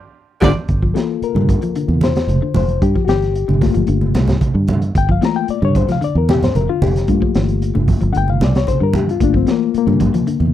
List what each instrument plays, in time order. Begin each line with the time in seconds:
0.41 fingered electric bass G1, tenor saxophone D3, clean electric guitar D3 F3 G3 D4 F4 G4, bass trombone D3, reed electric piano D4 F4 G4, fiddle D5, kick, snare, low conga
0.68 fingered electric bass G1, kick, closed hi-hat, high conga
0.82 clean electric guitar F3, kick
0.94 clean electric guitar E3, reed electric piano A#3 F4 A4, snare, closed hi-hat
1.22 reed electric piano A#4, muted fingered electric bass stroke, closed hi-hat, high conga
1.35 fingered electric bass G2, clean electric guitar D3, high conga
1.49 kick, closed hi-hat, low conga
1.62 clean electric guitar F3, closed hi-hat
1.75 clean electric guitar D3, closed hi-hat, high conga
1.88 fingered electric bass E2, high conga
2.01 reed electric piano C5, snare, closed hi-hat, high conga
2.16 snare, closed hi-hat
2.27 fingered electric bass F1, closed hi-hat, high conga
2.42 clean electric guitar D3
2.54 fingered electric bass F1, reed electric piano C5, open hi-hat, high conga, low conga
2.69 closed hi-hat
2.82 fingered electric bass G2, reed electric piano G4, kick, closed hi-hat, high conga
2.96 clean electric guitar F3, kick
3.05 fingered electric bass G1, clean electric guitar E3, reed electric piano F#4, closed hi-hat
3.09 reed electric piano G4, snare
3.22 snare, closed hi-hat
3.34 closed hi-hat, high conga
3.48 fingered electric bass G1, clean electric guitar D3, high conga
3.61 reed electric piano A3 A#3 F4, kick, snare, open hi-hat, low conga
3.74 fingered electric bass G1, clean electric guitar F3, closed hi-hat
3.87 fingered electric bass G1, clean electric guitar D3, closed hi-hat, high conga
4.01 high conga
4.14 fingered electric bass C2, snare, closed hi-hat, high conga
4.28 snare, closed hi-hat, low conga
4.41 kick, closed hi-hat, high conga
4.54 fingered electric bass G2, clean electric guitar D3
4.67 closed hi-hat, high conga, low conga
4.82 closed hi-hat
4.95 fingered electric bass G1, reed electric piano G5, kick, closed hi-hat, high conga
5.09 clean electric guitar F3, reed electric piano F5, kick
5.22 clean electric guitar E3, reed electric piano A3 A#3 F4 A#5, snare, closed hi-hat
5.36 reed electric piano G5
5.48 reed electric piano D5, muted fingered electric bass stroke, closed hi-hat, high conga
5.62 fingered electric bass G2, clean electric guitar D3, reed electric piano C#5, high conga
5.75 reed electric piano C5, kick, closed hi-hat, low conga
5.89 clean electric guitar F3, reed electric piano F5, snare, closed hi-hat, high conga
6.01 clean electric guitar D3, reed electric piano D5, closed hi-hat, high conga
6.15 fingered electric bass E2, reed electric piano A#4
6.29 reed electric piano G4, snare, closed hi-hat, high conga
6.43 reed electric piano C5, snare, closed hi-hat, low conga
6.55 fingered electric bass F1, reed electric piano A#4, closed hi-hat, high conga
6.69 clean electric guitar D3, reed electric piano F4
6.82 fingered electric bass F1, reed electric piano G4, open hi-hat, high conga, low conga
6.96 snare, closed hi-hat
7.07 fingered electric bass G2, reed electric piano A3 A#3 F4, kick, closed hi-hat, high conga
7.22 clean electric guitar F3, kick
7.34 fingered electric bass G1, clean electric guitar E3, snare, closed hi-hat
7.48 closed hi-hat
7.61 closed hi-hat, high conga
7.75 fingered electric bass G1, clean electric guitar D3, high conga
7.88 kick, open hi-hat, low conga
8.01 fingered electric bass G1, clean electric guitar F3, closed hi-hat
8.13 fingered electric bass G1, clean electric guitar D3, reed electric piano F#5, closed hi-hat, high conga
8.17 reed electric piano G5
8.28 reed electric piano F5, high conga
8.41 fingered electric bass C2, reed electric piano D5, snare, closed hi-hat, high conga
8.55 reed electric piano C#5, snare, closed hi-hat
8.67 reed electric piano C5, kick, closed hi-hat, high conga
8.80 fingered electric bass G2, clean electric guitar D3, reed electric piano A#4
8.93 reed electric piano G4, closed hi-hat, high conga, low conga
9.09 reed electric piano F4, closed hi-hat
9.20 fingered electric bass G1, reed electric piano A3 A#3 D4 F4, kick, closed hi-hat, high conga
9.34 clean electric guitar F3, reed electric piano C4, kick
9.47 clean electric guitar E3, snare, closed hi-hat
9.51 reed electric piano A#3
9.74 reed electric piano A#3, muted fingered electric bass stroke, closed hi-hat, high conga
9.87 fingered electric bass G2, clean electric guitar D3, high conga
10.00 kick, closed hi-hat, low conga
10.14 clean electric guitar F3, closed hi-hat, high conga
10.27 clean electric guitar D3, closed hi-hat, high conga
10.40 fingered electric bass E2, high conga